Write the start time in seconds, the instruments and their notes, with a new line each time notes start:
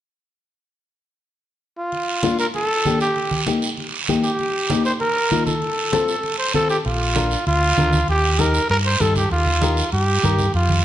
1.78 trumpet F4
1.92 high conga, long guiro
2.23 nylon-string guitar A#3 D4 F4, high conga, short guiro
2.39 trumpet A#4, short guiro
2.54 trumpet A4, high conga, long guiro
2.85 nylon-string guitar A#3 D4 G4, high conga, short guiro
3.01 trumpet G4, short guiro
3.16 high conga, long guiro
3.31 high conga
3.46 nylon-string guitar A#3 D#4 G4, high conga, short guiro
3.62 short guiro
3.77 high conga, long guiro
4.08 nylon-string guitar A#3 D#4 G4, high conga, short guiro
4.24 trumpet G4, short guiro
4.39 high conga, long guiro
4.69 nylon-string guitar A#3 D#4 G4, high conga, short guiro
4.85 trumpet C5, short guiro
5.00 trumpet A#4, high conga, long guiro
5.31 nylon-string guitar A#3 D#4 F4, high conga, short guiro
5.47 trumpet A4, high conga, short guiro
5.62 high conga, long guiro
5.92 nylon-string guitar C4 F4 A4, high conga, short guiro
6.08 short guiro
6.23 high conga, long guiro
6.39 trumpet C5
6.54 nylon-string guitar C4 F4 A4, trumpet A4, high conga, short guiro
6.69 trumpet G4, short guiro
6.85 fingered electric bass A#1, trumpet F4, high conga, long guiro
7.15 nylon-string guitar D4 F4 A#4, high conga, short guiro
7.31 short guiro
7.47 fingered electric bass D2, trumpet F4, high conga, long guiro
7.77 fingered electric bass D2, nylon-string guitar D4 F4 A#4, high conga, short guiro
7.93 high conga, short guiro
8.08 fingered electric bass D#2, trumpet G4, high conga, long guiro
8.39 nylon-string guitar D#4 G4 A#4, trumpet A#4, high conga, short guiro
8.54 short guiro
8.70 fingered electric bass G2, trumpet A#4, high conga, long guiro
8.85 trumpet C5
9.00 fingered electric bass G2, nylon-string guitar D#4 G4 A4, trumpet A4, high conga, short guiro
9.15 trumpet G4, high conga, short guiro
9.31 fingered electric bass D#2, trumpet F4, high conga, long guiro
9.46 high conga
9.62 nylon-string guitar D#4 G4 A#4, high conga, short guiro
9.77 short guiro
9.92 fingered electric bass G2, trumpet G4, high conga, long guiro
10.23 fingered electric bass G2, nylon-string guitar D#4 G4 A#4, high conga, short guiro
10.39 high conga, short guiro
10.54 fingered electric bass F2, trumpet F4, high conga, long guiro
10.69 high conga